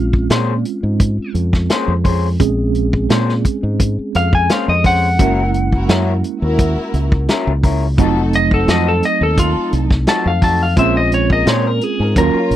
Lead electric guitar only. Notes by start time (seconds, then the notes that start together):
Already playing: F5
4.16 F5
4.35 G#5
4.51 F5
4.69 D#5
4.86 F#5
8.36 D#5
8.54 A4
8.71 D#5
8.88 A4
9.05 D#5
9.23 A4
9.39 F4
10.09 A5
10.27 F5
10.44 A5
10.63 F5
10.79 E5
10.97 D#5
11.14 C#5
11.33 D#5
11.49 C#5
11.67 A#4
11.84 G#4
12.18 A#4